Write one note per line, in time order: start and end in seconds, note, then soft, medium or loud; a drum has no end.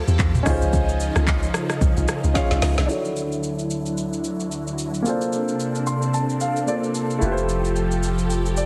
0.00 0.44 F3 medium
0.00 0.41 A3 medium
0.00 0.42 E4 medium
0.00 0.42 F4 medium
0.00 0.43 G4 medium
0.00 0.44 G4 medium
0.00 0.42 A4 medium
0.00 0.44 C5 medium
0.08 0.17 E2 medium
0.08 shaker medium
0.19 0.42 E2 loud
0.19 kick loud
0.19 clap loud
0.19 shaker medium
0.35 mid tom medium
0.35 shaker medium
0.43 0.60 C#2 loud
0.43 2.87 C#3 medium
0.43 2.87 F3 medium
0.43 2.30 C#4 medium
0.43 2.31 D#4 medium
0.43 2.87 D#4 medium
0.43 2.32 F4 medium
0.43 kick medium
0.43 cross-stick medium
0.43 open hi-hat medium
0.43 shaker medium
0.48 2.33 G#4 medium
0.48 2.33 C5 medium
0.62 0.71 C#2 medium
0.62 shaker medium
0.73 1.10 C#2 loud
0.73 kick loud
0.73 shaker medium
0.89 shaker medium
1.00 shaker medium
1.16 1.49 C#2 loud
1.16 cross-stick medium
1.16 shaker medium
1.27 kick loud
1.27 clap loud
1.27 shaker medium
1.43 shaker medium
1.54 cross-stick loud
1.54 shaker medium
1.70 cross-stick medium
1.70 shaker medium
1.81 1.95 C2 medium
1.81 kick loud
1.81 shaker medium
1.97 2.07 C2 loud
1.97 shaker medium
2.08 cross-stick medium
2.08 shaker loud
2.24 2.34 C#2 medium
2.24 shaker medium
2.34 2.89 C#4 medium
2.34 2.89 D#4 medium
2.34 2.89 F4 medium
2.34 2.90 G#4 medium
2.34 2.90 C#5 medium
2.34 2.86 F5 medium
2.34 kick loud
2.34 snare medium
2.34 shaker medium
2.51 2.61 C2 medium
2.51 snare medium
2.51 shaker soft
2.62 2.76 C#2 loud
2.62 snare loud
2.62 open hi-hat medium
2.62 shaker medium
2.78 2.88 C2 medium
2.78 snare medium
2.78 shaker medium
2.86 5.03 D2 medium
2.86 5.03 D3 medium
2.86 5.03 F#3 medium
2.86 5.00 D4 medium
2.86 5.01 E4 medium
2.86 5.03 E4 medium
2.86 5.02 F#4 medium
2.86 shaker medium
2.91 5.02 A4 medium
2.91 5.03 C#5 medium
3.05 shaker medium
3.16 shaker medium
3.32 shaker soft
3.43 shaker medium
3.59 shaker soft
3.71 shaker medium
3.86 shaker medium
3.98 shaker medium
4.13 shaker soft
4.24 shaker medium
4.40 shaker soft
4.52 shaker medium
4.67 shaker soft
4.79 shaker medium
4.94 shaker soft
5.02 7.20 C3 medium
5.02 6.63 A#3 medium
5.02 5.12 C4 medium
5.02 7.20 D4 medium
5.02 6.65 F4 medium
5.02 8.66 A4 medium
5.02 shaker medium
5.07 6.66 D4 medium
5.07 6.65 A4 medium
5.07 6.66 C5 medium
5.21 shaker medium
5.33 shaker medium
5.48 shaker soft
5.60 shaker medium
5.75 shaker soft
5.87 6.12 C6 medium
5.87 shaker medium
6.02 shaker medium
6.14 6.39 A5 medium
6.14 shaker medium
6.30 shaker medium
6.41 6.66 F5 medium
6.41 shaker medium
6.56 shaker soft
6.66 7.21 A#3 medium
6.66 7.22 D4 soft
6.66 7.21 F4 soft
6.66 7.22 A4 soft
6.66 6.76 C5 soft
6.66 6.75 D5 medium
6.66 shaker medium
6.76 7.26 D5 medium
6.84 shaker soft
6.95 shaker medium
7.10 shaker medium
7.19 8.66 F1 medium
7.19 8.66 F3 medium
7.19 8.66 A3 medium
7.19 8.66 E4 medium
7.19 8.66 F4 medium
7.19 8.66 G4 medium
7.19 shaker medium
7.24 8.66 G4 medium
7.24 7.31 B4 medium
7.32 8.66 C5 medium
7.38 shaker medium
7.49 shaker medium
7.65 shaker soft
7.76 shaker medium
7.91 shaker medium
8.03 shaker medium
8.18 shaker medium
8.30 shaker medium
8.46 shaker medium
8.57 8.66 D5 medium
8.57 shaker medium